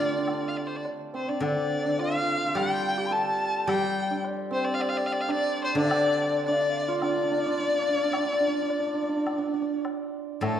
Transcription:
Already playing: D3 A3 C4 D4 F4 G4 D5
0.00 F4
0.05 D4
0.12 D4
0.19 D4
0.25 D4, high woodblock
0.33 D4
0.48 F5
0.57 D5
0.67 C5
0.76 D5
0.85 low woodblock
1.14 C4 C5
1.28 D4 D5
1.40 D3 D4 D5, high woodblock
1.84 D4 D5
1.99 F4 F5 G5, low woodblock
2.03 F5
2.08 F4
2.15 F4
2.22 F4
2.29 F4
2.36 F4
2.45 F4 A4
2.55 G3 G4 G5, high woodblock
2.97 G4
3.06 C6
3.11 A4 A5
3.67 G3 G4 G5 A5, high woodblock
3.74 G5
4.11 D4
4.24 low woodblock
4.51 C4 C5
4.65 D5
4.74 F5
4.80 D5, high woodblock
4.89 F5
4.97 D5
5.06 F5
5.12 D5
5.21 F5
5.28 D4 D5
5.64 C5
5.75 D3 D4 D5
5.85 F5
5.91 D5, high woodblock
6.46 D4 D5, low woodblock
6.53 F5
6.62 D5
6.70 F5
6.78 F5
6.83 D5
6.88 F4
7.02 D4 D5, high woodblock
7.09 D4
7.16 D4
7.23 D4
7.31 D4
7.38 D4
7.46 D4
7.52 D4
7.59 D4
7.67 D4
7.74 D4
7.82 D4
7.88 D4
7.95 D4
8.03 D4
8.11 D4, high woodblock
8.17 D4
8.25 D4
8.33 D4
8.40 D4
8.47 D4
8.54 D4
8.62 D4
8.70 D4, low woodblock
8.79 D4
8.86 D4
8.94 D4
9.02 D4
9.09 D4
9.17 D4
9.26 D4, high woodblock
9.33 D4
9.38 D4
9.48 D4
9.54 D4
9.62 D4
9.85 high woodblock, low woodblock
10.41 A2 A3 A4, high woodblock

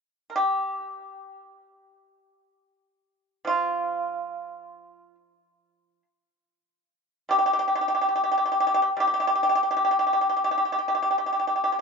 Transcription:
0.30 A#4
0.36 G4
3.45 F3 F4
7.29 G3 G4
7.39 G4
7.46 G4
7.53 G4
7.59 G4
7.68 G4
7.75 G4
7.81 G4
7.88 G4
7.95 G4
8.01 G4
8.09 G4
8.16 G4
8.24 G4
8.32 G4
8.38 G4
8.46 G4
8.52 G4
8.60 G4
8.67 G4
8.74 G4
8.82 G4
8.97 G3 G4
9.07 G4
9.14 G4
9.20 G4
9.27 G4
9.35 G4
9.43 G4
9.49 G4
9.55 G4
9.63 G4
9.71 G4
9.77 G4
9.85 G4
9.91 G4
9.99 G4
10.07 G4
10.13 G4
10.21 G4
10.29 G4
10.37 G4
10.44 G4
10.51 G4
10.58 G4
10.65 G4
10.72 G4
10.79 G4
10.88 G4
10.95 G4
11.02 G4
11.11 G4
11.18 G4
11.26 G4
11.33 G4
11.39 G4
11.47 G4
11.56 G4
11.64 G4
11.72 G4

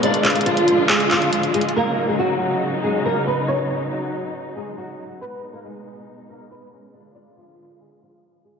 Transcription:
Already playing: G#3
0.03 D3 D4 F4 D5, closed hi-hat
0.14 closed hi-hat
0.24 D4 D5, clap, closed hi-hat
0.30 closed hi-hat
0.35 closed hi-hat
0.41 closed hi-hat
0.46 F3 F4, closed hi-hat
0.57 closed hi-hat
0.68 closed hi-hat
0.89 G#3 G#4, clap, closed hi-hat
1.00 closed hi-hat
1.11 F3 F4, clap, closed hi-hat
1.22 closed hi-hat
1.33 closed hi-hat
1.43 closed hi-hat
1.54 G#3 G#4, closed hi-hat
1.61 closed hi-hat
1.69 closed hi-hat
1.76 C#3 F#3 A#3 D#4 A#4
2.08 G#3 G#4
2.19 F#3 F#4
2.83 G#3 G#4
3.05 A#3 A#4
3.27 B3 B4
3.48 C#4 C#5
3.70 C#4 C#5
3.92 F#3 F#4
4.56 G#3 G#4
4.78 F#3 F#4
5.21 B2 G#3 B3 D#4 B4
5.53 A#3 A#4
5.64 G#3 G#4
6.29 A#3 A#4
6.51 B3 B4
6.72 C#4 C#5
6.94 D3 D4 F4 D5
7.15 D4 D5
7.37 F3 F4
7.80 G#3 G#4
8.02 F3 F4
8.45 G#3 G#4

